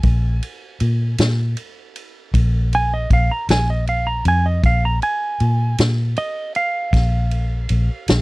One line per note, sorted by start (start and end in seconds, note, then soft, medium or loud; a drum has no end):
0.00 0.39 A#1 medium
0.00 1.16 G#5 medium
0.00 kick medium
0.00 ride medium
0.42 ride medium
0.80 1.16 A#2 medium
0.80 ride medium
1.18 1.54 A#2 medium
1.18 snare loud
1.18 ride medium
1.57 ride medium
1.96 ride medium
2.34 3.06 A#1 medium
2.34 kick medium
2.34 ride medium
2.73 2.92 G#5 loud
2.73 ride medium
2.94 3.11 D#5 medium
3.10 3.28 A#1 medium
3.10 3.31 F5 medium
3.10 kick medium
3.10 ride medium
3.31 3.49 A#5 medium
3.49 4.21 A#1 medium
3.49 3.69 G#5 medium
3.49 snare loud
3.49 ride medium
3.70 3.88 D#5 medium
3.87 4.07 F5 medium
3.87 ride medium
4.07 4.25 A#5 medium
4.25 4.61 F2 medium
4.25 4.45 G#5 loud
4.25 ride medium
4.46 4.64 D#5 medium
4.64 4.99 A#1 medium
4.64 4.83 F5 medium
4.64 kick loud
4.64 ride medium
4.85 5.03 A#5 medium
5.02 5.77 G#5 medium
5.02 ride medium
5.40 5.76 A#2 medium
5.40 ride soft
5.78 6.14 A#2 medium
5.78 snare loud
5.78 ride medium
6.16 6.55 D#5 loud
6.16 ride medium
6.55 8.22 F5 medium
6.55 ride medium
6.93 7.66 A#1 medium
6.93 kick medium
6.93 snare soft
6.93 ride medium
7.31 ride medium
7.69 7.88 A#1 medium
7.69 ride medium
8.08 8.22 A#1 medium
8.08 snare loud
8.08 ride medium